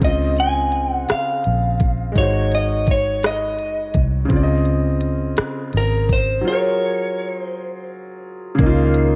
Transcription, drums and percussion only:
0, 0, Header, 1, 2, 480
1, 0, Start_track
1, 0, Key_signature, -5, "major"
1, 0, Tempo, 714286
1, 15, Time_signature, 6, 3, 24, 8
1, 6153, End_track
2, 0, Start_track
2, 0, Title_t, "Drums"
2, 11, Note_on_c, 9, 36, 84
2, 11, Note_on_c, 9, 42, 68
2, 78, Note_off_c, 9, 36, 0
2, 79, Note_off_c, 9, 42, 0
2, 248, Note_on_c, 9, 42, 40
2, 315, Note_off_c, 9, 42, 0
2, 485, Note_on_c, 9, 42, 58
2, 552, Note_off_c, 9, 42, 0
2, 730, Note_on_c, 9, 42, 70
2, 737, Note_on_c, 9, 37, 99
2, 797, Note_off_c, 9, 42, 0
2, 804, Note_off_c, 9, 37, 0
2, 968, Note_on_c, 9, 42, 42
2, 1035, Note_off_c, 9, 42, 0
2, 1209, Note_on_c, 9, 42, 61
2, 1213, Note_on_c, 9, 36, 82
2, 1276, Note_off_c, 9, 42, 0
2, 1280, Note_off_c, 9, 36, 0
2, 1450, Note_on_c, 9, 36, 91
2, 1450, Note_on_c, 9, 42, 60
2, 1517, Note_off_c, 9, 36, 0
2, 1517, Note_off_c, 9, 42, 0
2, 1691, Note_on_c, 9, 42, 44
2, 1758, Note_off_c, 9, 42, 0
2, 1924, Note_on_c, 9, 42, 58
2, 1930, Note_on_c, 9, 36, 76
2, 1992, Note_off_c, 9, 42, 0
2, 1997, Note_off_c, 9, 36, 0
2, 2169, Note_on_c, 9, 42, 69
2, 2176, Note_on_c, 9, 37, 111
2, 2236, Note_off_c, 9, 42, 0
2, 2244, Note_off_c, 9, 37, 0
2, 2409, Note_on_c, 9, 42, 44
2, 2476, Note_off_c, 9, 42, 0
2, 2647, Note_on_c, 9, 42, 66
2, 2652, Note_on_c, 9, 36, 73
2, 2714, Note_off_c, 9, 42, 0
2, 2719, Note_off_c, 9, 36, 0
2, 2890, Note_on_c, 9, 36, 88
2, 2890, Note_on_c, 9, 42, 67
2, 2957, Note_off_c, 9, 36, 0
2, 2957, Note_off_c, 9, 42, 0
2, 3127, Note_on_c, 9, 42, 41
2, 3194, Note_off_c, 9, 42, 0
2, 3366, Note_on_c, 9, 42, 62
2, 3433, Note_off_c, 9, 42, 0
2, 3607, Note_on_c, 9, 42, 75
2, 3615, Note_on_c, 9, 37, 107
2, 3675, Note_off_c, 9, 42, 0
2, 3682, Note_off_c, 9, 37, 0
2, 3850, Note_on_c, 9, 42, 46
2, 3917, Note_off_c, 9, 42, 0
2, 4092, Note_on_c, 9, 42, 62
2, 4094, Note_on_c, 9, 36, 80
2, 4159, Note_off_c, 9, 42, 0
2, 4161, Note_off_c, 9, 36, 0
2, 5771, Note_on_c, 9, 42, 78
2, 5773, Note_on_c, 9, 36, 108
2, 5838, Note_off_c, 9, 42, 0
2, 5840, Note_off_c, 9, 36, 0
2, 6008, Note_on_c, 9, 42, 51
2, 6075, Note_off_c, 9, 42, 0
2, 6153, End_track
0, 0, End_of_file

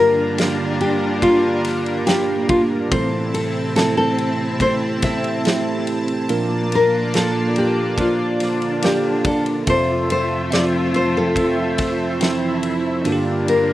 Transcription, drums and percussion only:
0, 0, Header, 1, 2, 480
1, 0, Start_track
1, 0, Key_signature, -1, "major"
1, 0, Tempo, 845070
1, 1655, Time_signature, 4, 2, 24, 8
1, 7799, End_track
2, 0, Start_track
2, 0, Title_t, "Drums"
2, 217, Note_on_c, 9, 51, 85
2, 226, Note_on_c, 9, 38, 124
2, 274, Note_off_c, 9, 51, 0
2, 283, Note_off_c, 9, 38, 0
2, 457, Note_on_c, 9, 51, 55
2, 514, Note_off_c, 9, 51, 0
2, 694, Note_on_c, 9, 36, 78
2, 697, Note_on_c, 9, 51, 59
2, 751, Note_off_c, 9, 36, 0
2, 754, Note_off_c, 9, 51, 0
2, 934, Note_on_c, 9, 51, 75
2, 945, Note_on_c, 9, 38, 38
2, 991, Note_off_c, 9, 51, 0
2, 1001, Note_off_c, 9, 38, 0
2, 1057, Note_on_c, 9, 51, 43
2, 1114, Note_off_c, 9, 51, 0
2, 1175, Note_on_c, 9, 51, 74
2, 1185, Note_on_c, 9, 38, 116
2, 1232, Note_off_c, 9, 51, 0
2, 1242, Note_off_c, 9, 38, 0
2, 1414, Note_on_c, 9, 51, 59
2, 1416, Note_on_c, 9, 36, 105
2, 1470, Note_off_c, 9, 51, 0
2, 1472, Note_off_c, 9, 36, 0
2, 1656, Note_on_c, 9, 36, 116
2, 1657, Note_on_c, 9, 51, 74
2, 1713, Note_off_c, 9, 36, 0
2, 1714, Note_off_c, 9, 51, 0
2, 1900, Note_on_c, 9, 51, 74
2, 1956, Note_off_c, 9, 51, 0
2, 2136, Note_on_c, 9, 51, 72
2, 2145, Note_on_c, 9, 38, 118
2, 2193, Note_off_c, 9, 51, 0
2, 2202, Note_off_c, 9, 38, 0
2, 2376, Note_on_c, 9, 51, 54
2, 2433, Note_off_c, 9, 51, 0
2, 2613, Note_on_c, 9, 36, 88
2, 2616, Note_on_c, 9, 51, 60
2, 2669, Note_off_c, 9, 36, 0
2, 2672, Note_off_c, 9, 51, 0
2, 2853, Note_on_c, 9, 51, 71
2, 2856, Note_on_c, 9, 36, 101
2, 2863, Note_on_c, 9, 38, 37
2, 2909, Note_off_c, 9, 51, 0
2, 2912, Note_off_c, 9, 36, 0
2, 2920, Note_off_c, 9, 38, 0
2, 2977, Note_on_c, 9, 51, 45
2, 3033, Note_off_c, 9, 51, 0
2, 3095, Note_on_c, 9, 51, 78
2, 3106, Note_on_c, 9, 38, 120
2, 3152, Note_off_c, 9, 51, 0
2, 3163, Note_off_c, 9, 38, 0
2, 3334, Note_on_c, 9, 51, 61
2, 3391, Note_off_c, 9, 51, 0
2, 3453, Note_on_c, 9, 51, 47
2, 3509, Note_off_c, 9, 51, 0
2, 3573, Note_on_c, 9, 51, 70
2, 3630, Note_off_c, 9, 51, 0
2, 3817, Note_on_c, 9, 51, 68
2, 3873, Note_off_c, 9, 51, 0
2, 4054, Note_on_c, 9, 51, 78
2, 4063, Note_on_c, 9, 38, 127
2, 4111, Note_off_c, 9, 51, 0
2, 4120, Note_off_c, 9, 38, 0
2, 4293, Note_on_c, 9, 51, 62
2, 4349, Note_off_c, 9, 51, 0
2, 4531, Note_on_c, 9, 36, 90
2, 4534, Note_on_c, 9, 51, 60
2, 4587, Note_off_c, 9, 36, 0
2, 4591, Note_off_c, 9, 51, 0
2, 4772, Note_on_c, 9, 51, 69
2, 4782, Note_on_c, 9, 38, 37
2, 4829, Note_off_c, 9, 51, 0
2, 4839, Note_off_c, 9, 38, 0
2, 4894, Note_on_c, 9, 51, 45
2, 4951, Note_off_c, 9, 51, 0
2, 5012, Note_on_c, 9, 51, 82
2, 5023, Note_on_c, 9, 38, 101
2, 5069, Note_off_c, 9, 51, 0
2, 5079, Note_off_c, 9, 38, 0
2, 5251, Note_on_c, 9, 51, 66
2, 5252, Note_on_c, 9, 36, 102
2, 5308, Note_off_c, 9, 51, 0
2, 5309, Note_off_c, 9, 36, 0
2, 5373, Note_on_c, 9, 51, 49
2, 5430, Note_off_c, 9, 51, 0
2, 5492, Note_on_c, 9, 51, 73
2, 5494, Note_on_c, 9, 36, 107
2, 5549, Note_off_c, 9, 51, 0
2, 5551, Note_off_c, 9, 36, 0
2, 5737, Note_on_c, 9, 51, 72
2, 5794, Note_off_c, 9, 51, 0
2, 5975, Note_on_c, 9, 51, 72
2, 5984, Note_on_c, 9, 38, 121
2, 6031, Note_off_c, 9, 51, 0
2, 6040, Note_off_c, 9, 38, 0
2, 6215, Note_on_c, 9, 51, 54
2, 6272, Note_off_c, 9, 51, 0
2, 6451, Note_on_c, 9, 36, 85
2, 6455, Note_on_c, 9, 51, 69
2, 6508, Note_off_c, 9, 36, 0
2, 6512, Note_off_c, 9, 51, 0
2, 6691, Note_on_c, 9, 51, 77
2, 6695, Note_on_c, 9, 36, 104
2, 6702, Note_on_c, 9, 38, 40
2, 6748, Note_off_c, 9, 51, 0
2, 6752, Note_off_c, 9, 36, 0
2, 6759, Note_off_c, 9, 38, 0
2, 6933, Note_on_c, 9, 51, 78
2, 6944, Note_on_c, 9, 38, 106
2, 6990, Note_off_c, 9, 51, 0
2, 7001, Note_off_c, 9, 38, 0
2, 7173, Note_on_c, 9, 51, 62
2, 7230, Note_off_c, 9, 51, 0
2, 7412, Note_on_c, 9, 51, 68
2, 7469, Note_off_c, 9, 51, 0
2, 7657, Note_on_c, 9, 51, 71
2, 7714, Note_off_c, 9, 51, 0
2, 7799, End_track
0, 0, End_of_file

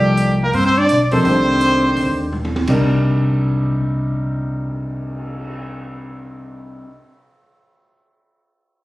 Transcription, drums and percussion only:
0, 0, Header, 1, 3, 480
1, 0, Start_track
1, 0, Tempo, 357995
1, 1676, Time_signature, 4, 2, 24, 8
1, 11854, End_track
2, 0, Start_track
2, 0, Title_t, "Cymbal swell"
2, 3903, Note_on_c, 9, 59, 42
2, 7332, Note_off_c, 9, 59, 0
2, 11854, End_track
3, 0, Start_track
3, 0, Title_t, "Drums"
3, 231, Note_on_c, 9, 42, 54
3, 365, Note_off_c, 9, 42, 0
3, 714, Note_on_c, 9, 46, 43
3, 848, Note_off_c, 9, 46, 0
3, 1191, Note_on_c, 9, 42, 54
3, 1325, Note_off_c, 9, 42, 0
3, 1492, Note_on_c, 9, 46, 34
3, 1504, Note_on_c, 9, 36, 53
3, 1626, Note_off_c, 9, 46, 0
3, 1638, Note_off_c, 9, 36, 0
3, 1673, Note_on_c, 9, 46, 45
3, 1807, Note_off_c, 9, 46, 0
3, 2154, Note_on_c, 9, 42, 47
3, 2288, Note_off_c, 9, 42, 0
3, 2635, Note_on_c, 9, 46, 41
3, 2769, Note_off_c, 9, 46, 0
3, 3116, Note_on_c, 9, 43, 42
3, 3251, Note_off_c, 9, 43, 0
3, 3282, Note_on_c, 9, 48, 51
3, 3416, Note_off_c, 9, 48, 0
3, 3433, Note_on_c, 9, 48, 67
3, 3567, Note_off_c, 9, 48, 0
3, 3585, Note_on_c, 9, 49, 61
3, 3596, Note_on_c, 9, 36, 55
3, 3720, Note_off_c, 9, 49, 0
3, 3730, Note_off_c, 9, 36, 0
3, 11854, End_track
0, 0, End_of_file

